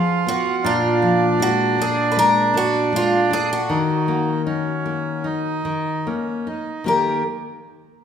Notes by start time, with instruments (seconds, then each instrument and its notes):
Already playing: nylon-string guitar F3 G#3, accordion F4, twelve-string acoustic guitar G#4
0.27 nylon-string guitar B3, twelve-string acoustic guitar F#4
0.64 nylon-string guitar A#2, accordion D4, twelve-string acoustic guitar F4
1.02 nylon-string guitar F3
1.40 nylon-string guitar G#3, twelve-string acoustic guitar F#4
1.79 nylon-string guitar D4, twelve-string acoustic guitar G#4
2.12 twelve-string acoustic guitar B4
2.17 nylon-string guitar G#3, twelve-string acoustic guitar A#4
2.54 nylon-string guitar D4, twelve-string acoustic guitar F#4
2.93 nylon-string guitar G#3, twelve-string acoustic guitar F4
3.31 nylon-string guitar D4, twelve-string acoustic guitar G#4
3.53 twelve-string acoustic guitar F#4
3.69 nylon-string guitar D#3, accordion D#4
4.08 nylon-string guitar A#3
4.46 accordion C#4, nylon-string guitar D#4
4.86 nylon-string guitar A#3
5.24 nylon-string guitar D#4, accordion D#4
5.65 nylon-string guitar D#3
6.06 nylon-string guitar A#3, accordion C#4
6.47 nylon-string guitar D#4, accordion D#4
6.84 nylon-string guitar D#3 A#3 D#4 G4, accordion G4, twelve-string acoustic guitar A#4